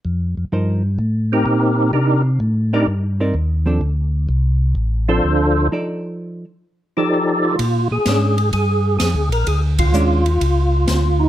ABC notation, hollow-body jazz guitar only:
X:1
M:4/4
L:1/8
Q:"Swing" 1/4=128
K:Fmix
V:1 name="Hollow-body jazz guitar"
z2 [F,EBc] z4 z | z3 [CEBd] z [CEBd] z [F,CDA] | z4 z [F,CDA]3 | [F,EAd]3 z4 z |
[K:Bbmix] z2 [A,^CD] z4 z | z2 [A,^CD] z4 z |]